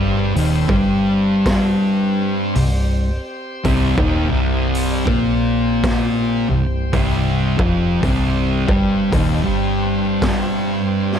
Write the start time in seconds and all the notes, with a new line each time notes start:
Already playing: G1 G2 G3 C4 G4 C5
0.35 D#1 D#2 D#3, open hi-hat
0.69 G1 G2 G3, kick
1.46 kick, snare, open hi-hat
2.55 C1 C2, open hi-hat
3.64 C1 C2 C3, kick, open hi-hat
3.98 D#1 D#2 D#3, kick
4.30 C1 C2 C3
4.75 open hi-hat
5.07 A#1 A#2 A#3, kick
5.84 kick, snare, open hi-hat
6.49 C1 C2
6.93 C1 C2 C3, kick, open hi-hat
7.58 F1 F2 F3, kick
8.03 C1 C2 C3, kick, open hi-hat
8.68 G1 G2 G3, kick
9.13 D#1 D#2 D#3, kick, open hi-hat
9.46 G1 G2 G3
10.22 kick, snare, open hi-hat
11.12 snare